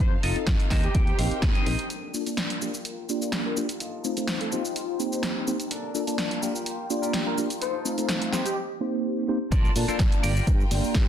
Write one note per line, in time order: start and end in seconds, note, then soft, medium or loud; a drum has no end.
0.00 0.15 F2 medium
0.00 1.88 D#4 medium
0.00 0.70 A4 medium
0.00 0.12 C5 medium
0.00 0.70 F5 medium
0.23 0.31 F1 medium
0.23 0.33 C4 medium
0.23 0.33 D#4 medium
0.23 0.33 F4 medium
0.23 0.36 F4 loud
0.23 0.33 A4 medium
0.23 0.36 A4 loud
0.23 0.36 D#5 loud
0.23 0.33 D#5 medium
0.23 open hi-hat loud
0.35 0.68 C4 medium
0.35 0.68 D#4 medium
0.35 0.68 F4 medium
0.35 0.68 A4 medium
0.35 0.68 D#5 medium
0.35 muted fingered electric bass stroke soft
0.35 closed hi-hat soft
0.47 0.55 F2 loud
0.47 kick loud
0.47 snare loud
0.47 closed hi-hat medium
0.60 muted clean electric guitar stroke medium
0.60 closed hi-hat medium
0.70 0.87 D#2 medium
0.70 0.79 C4 medium
0.70 0.79 D#4 medium
0.70 0.79 G4 medium
0.70 1.00 G4 medium
0.70 0.80 A#4 medium
0.70 1.89 C5 medium
0.70 1.00 C5 medium
0.70 1.00 D#5 loud
0.70 0.80 D#5 loud
0.70 1.89 G5 medium
0.70 0.93 A5 medium
0.70 kick medium
0.70 snare medium
0.70 open hi-hat medium
0.84 1.50 G4 loud
0.84 closed hi-hat soft
0.95 1.10 D#2 medium
0.95 1.17 G5 medium
0.95 kick loud
0.95 closed hi-hat medium
1.07 muted clean electric guitar stroke soft
1.07 closed hi-hat soft
1.18 1.27 A#1 medium
1.18 1.63 C4 medium
1.18 1.63 D#4 medium
1.18 1.64 G4 medium
1.18 1.64 A#4 medium
1.18 1.64 D#5 medium
1.18 1.41 F5 medium
1.18 open hi-hat loud
1.31 muted fingered electric bass stroke soft
1.31 closed hi-hat soft
1.42 1.50 D#2 loud
1.42 1.54 D#5 medium
1.42 kick loud
1.42 snare loud
1.42 closed hi-hat medium
1.55 1.84 G4 medium
1.55 1.84 C5 medium
1.55 1.65 D#5 loud
1.55 closed hi-hat soft
1.66 1.74 A#1 medium
1.66 1.75 C4 loud
1.66 1.75 D#4 medium
1.66 1.75 G4 medium
1.66 1.75 A#4 medium
1.66 1.88 D#5 medium
1.66 1.75 D#5 loud
1.66 open hi-hat medium
1.79 closed hi-hat medium
1.90 2.61 A#3 medium
1.90 2.61 D4 medium
1.90 2.20 A4 loud
1.90 2.20 A#4 medium
1.90 2.20 D5 loud
1.90 2.61 A5 medium
1.90 closed hi-hat medium
1.90 cabasa soft
2.14 2.23 A#3 medium
2.14 2.23 D4 medium
2.14 2.24 F4 medium
2.14 2.24 A4 medium
2.14 2.24 D5 medium
2.14 cabasa medium
2.26 2.59 A#3 medium
2.26 2.59 D4 medium
2.26 2.59 F4 medium
2.26 2.59 D5 medium
2.26 2.59 A5 medium
2.26 closed hi-hat soft
2.26 cabasa soft
2.37 snare loud
2.37 closed hi-hat medium
2.37 cabasa soft
2.50 muted clean electric guitar stroke medium
2.50 closed hi-hat soft
2.61 2.70 A#3 medium
2.61 2.70 D4 medium
2.61 3.79 F4 medium
2.61 2.70 F4 medium
2.61 2.70 G4 medium
2.61 3.09 G4 medium
2.61 3.79 A#4 medium
2.61 3.09 A#4 medium
2.61 2.70 D5 medium
2.61 3.09 F5 medium
2.61 3.79 G5 medium
2.61 cabasa medium
2.74 cabasa soft
2.85 closed hi-hat medium
2.85 cabasa soft
3.09 3.54 A#3 medium
3.09 3.54 D4 medium
3.09 3.54 F4 medium
3.09 3.54 G4 medium
3.09 3.54 D5 medium
3.09 cabasa medium
3.22 3.39 G4 medium
3.22 3.39 A#4 medium
3.22 3.39 F5 medium
3.22 cabasa soft
3.32 snare loud
3.32 closed hi-hat medium
3.32 cabasa soft
3.45 3.57 A#4 medium
3.56 3.65 A#3 medium
3.56 3.65 D4 medium
3.56 3.65 F4 medium
3.56 3.65 G4 medium
3.56 3.65 D5 medium
3.56 muted clean electric guitar stroke soft
3.56 cabasa medium
3.69 closed hi-hat medium
3.69 cabasa soft
3.80 4.51 D#4 medium
3.80 4.11 F4 loud
3.80 4.11 A4 loud
3.80 4.51 A4 medium
3.80 4.11 D#5 loud
3.80 4.51 F5 medium
3.80 closed hi-hat medium
3.80 cabasa soft
4.04 4.14 A3 medium
4.04 4.14 C4 medium
4.04 4.14 D#4 medium
4.04 4.14 F4 medium
4.04 4.14 C5 medium
4.04 cabasa medium
4.17 4.49 A3 medium
4.17 4.49 C4 medium
4.17 4.49 D#4 medium
4.17 4.49 F4 medium
4.17 4.50 C5 medium
4.17 closed hi-hat soft
4.17 cabasa soft
4.27 snare loud
4.27 closed hi-hat medium
4.27 cabasa soft
4.40 4.50 A4 medium
4.40 muted clean electric guitar stroke medium
4.40 closed hi-hat soft
4.51 4.60 A#3 medium
4.51 4.60 C4 medium
4.51 5.70 D#4 medium
4.51 4.60 D#4 medium
4.51 5.00 D#4 medium
4.51 4.99 F4 medium
4.51 4.61 G4 medium
4.51 5.00 G4 medium
4.51 5.00 C5 medium
4.51 5.70 C5 medium
4.51 4.61 C5 medium
4.51 5.70 G5 medium
4.51 cabasa medium
4.65 cabasa soft
4.76 closed hi-hat medium
4.76 cabasa soft
4.99 5.44 A#3 medium
4.99 5.44 C4 medium
4.99 5.45 D#4 medium
4.99 5.45 G4 medium
4.99 5.45 C5 medium
4.99 cabasa medium
5.12 5.30 D#4 medium
5.12 5.30 G4 medium
5.12 5.30 C5 loud
5.12 cabasa soft
5.23 snare loud
5.23 closed hi-hat medium
5.23 cabasa soft
5.47 5.56 A#3 medium
5.47 5.56 C4 medium
5.47 5.56 D#4 medium
5.47 5.56 G4 medium
5.47 5.56 C5 loud
5.47 cabasa medium
5.60 closed hi-hat soft
5.60 cabasa soft
5.71 7.60 A#3 medium
5.71 6.01 D4 loud
5.71 6.42 D4 medium
5.71 6.01 A4 loud
5.71 6.01 A#4 loud
5.71 6.42 A5 medium
5.71 closed hi-hat medium
5.71 cabasa soft
5.94 6.04 A#3 medium
5.94 6.04 D4 medium
5.94 6.04 F4 medium
5.94 6.05 A4 medium
5.94 6.05 D5 medium
5.94 cabasa medium
6.07 6.40 A#3 medium
6.07 6.40 D4 medium
6.07 6.40 F4 medium
6.07 6.40 D5 medium
6.07 6.40 A5 medium
6.07 closed hi-hat soft
6.07 cabasa soft
6.18 snare loud
6.18 closed hi-hat medium
6.18 cabasa soft
6.31 muted clean electric guitar stroke medium
6.31 closed hi-hat soft
6.42 6.51 A#3 medium
6.42 6.51 D4 medium
6.42 6.51 F4 medium
6.42 7.60 F4 medium
6.42 6.90 F4 medium
6.42 6.90 G4 medium
6.42 6.51 G4 medium
6.42 6.90 A#4 medium
6.42 6.51 D5 loud
6.42 7.60 G5 medium
6.42 cabasa medium
6.55 cabasa soft
6.66 closed hi-hat medium
6.66 cabasa soft
6.90 7.35 A#3 medium
6.90 7.35 D4 medium
6.90 7.35 F4 medium
6.90 7.35 G4 medium
6.90 7.35 D5 medium
6.90 cabasa medium
7.02 7.20 F4 medium
7.02 7.20 G4 medium
7.02 7.20 A#4 loud
7.02 cabasa soft
7.13 snare loud
7.13 closed hi-hat medium
7.13 cabasa soft
7.26 7.38 A#4 loud
7.38 7.46 A#3 medium
7.38 7.46 D4 medium
7.38 7.46 F4 medium
7.38 7.46 G4 medium
7.38 7.46 D5 loud
7.38 cabasa medium
7.50 closed hi-hat soft
7.50 cabasa soft
7.61 7.91 D#4 loud
7.61 8.32 D#4 medium
7.61 7.91 F4 medium
7.61 8.32 A4 medium
7.61 7.91 A4 loud
7.61 7.74 C5 medium
7.61 8.32 F5 medium
7.61 closed hi-hat medium
7.61 cabasa soft
7.85 7.95 A3 medium
7.85 7.95 C4 medium
7.85 7.95 D#4 medium
7.85 7.95 F4 medium
7.85 7.95 C5 medium
7.85 cabasa medium
7.97 8.30 A3 medium
7.97 8.30 C4 medium
7.97 8.30 D#4 medium
7.97 8.30 F4 medium
7.97 8.30 C5 medium
7.97 closed hi-hat soft
7.97 cabasa soft
8.09 snare loud
8.09 closed hi-hat medium
8.09 cabasa soft
8.22 muted clean electric guitar stroke medium
8.22 closed hi-hat soft
8.32 8.41 A#3 medium
8.32 8.41 C4 medium
8.32 8.56 C4 medium
8.32 8.41 D#4 medium
8.32 8.57 D#4 medium
8.32 8.56 G4 medium
8.32 8.41 G4 medium
8.32 8.57 G4 medium
8.32 8.57 C5 loud
8.32 8.42 C5 medium
8.32 8.56 D#5 medium
8.32 snare medium
8.32 cabasa medium
8.45 8.57 G4 medium
8.45 closed hi-hat soft
8.45 cabasa soft
8.80 9.25 A#3 medium
8.80 9.25 C4 medium
8.80 9.25 D#4 medium
8.80 9.26 G4 medium
8.80 9.26 C5 medium
9.28 9.37 A#3 medium
9.28 9.37 C4 medium
9.28 9.37 D#4 medium
9.28 9.37 G4 medium
9.28 9.37 C5 loud
9.52 9.67 A#1 medium
9.52 10.23 A#3 medium
9.52 10.23 D4 medium
9.52 9.70 F4 loud
9.52 9.70 A4 loud
9.52 9.70 A#4 loud
9.52 9.70 D5 loud
9.52 10.23 A5 medium
9.52 kick loud
9.52 closed hi-hat medium
9.52 cabasa soft
9.65 cabasa soft
9.75 9.84 A#2 medium
9.75 9.85 A#3 medium
9.75 9.85 D4 medium
9.75 9.85 F4 medium
9.75 9.85 A4 medium
9.75 9.86 D5 medium
9.75 open hi-hat loud
9.75 cabasa medium
9.88 10.20 A#3 medium
9.88 10.21 D4 medium
9.88 10.21 F4 medium
9.88 10.00 F4 medium
9.88 10.00 A4 medium
9.88 10.00 A#4 medium
9.88 10.00 C5 medium
9.88 10.21 D5 medium
9.88 10.21 A5 medium
9.88 muted fingered electric bass stroke soft
9.88 closed hi-hat soft
9.88 cabasa soft
9.99 10.08 A#1 loud
9.99 kick loud
9.99 snare loud
9.99 closed hi-hat medium
9.99 cabasa soft
10.12 muted clean electric guitar stroke soft
10.12 closed hi-hat medium
10.12 cabasa soft
10.23 10.39 G1 medium
10.23 10.32 A#3 medium
10.23 10.32 D4 medium
10.23 11.08 F4 medium
10.23 10.32 F4 medium
10.23 10.62 F4 medium
10.23 10.32 G4 medium
10.23 10.62 G4 medium
10.23 11.08 A#4 medium
10.23 10.62 A#4 medium
10.23 10.62 D5 loud
10.23 10.32 D5 loud
10.23 11.08 G5 medium
10.23 open hi-hat medium
10.23 cabasa medium
10.36 cabasa soft
10.47 10.63 G2 medium
10.47 kick loud
10.47 closed hi-hat medium
10.47 cabasa soft
10.60 cabasa soft
10.71 10.79 G1 medium
10.71 11.08 A#3 medium
10.71 11.08 D4 medium
10.71 11.08 F4 medium
10.71 11.08 G4 medium
10.71 11.08 D5 medium
10.71 muted clean electric guitar stroke soft
10.71 open hi-hat loud
10.71 cabasa medium
10.84 muted fingered electric bass stroke soft
10.84 cabasa soft
10.94 11.08 G2 medium
10.94 kick loud
10.94 snare loud
10.94 closed hi-hat medium
10.94 cabasa soft